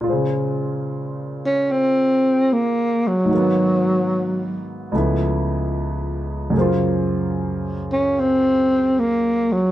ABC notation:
X:1
M:4/4
L:1/8
Q:"Swing" 1/4=74
K:Bbm
V:1 name="Tenor saxophone"
z3 D C2 B, G,- | G,3 z4 z | z3 D C2 B, G, |]
V:2 name="Grand piano" clef=bass
[B,,D,A,Fc]8 | [A,,E,G,B,_C]4 [D,,D,F,=A,C=E]4 | [G,,D,A,B,Fc]8 |]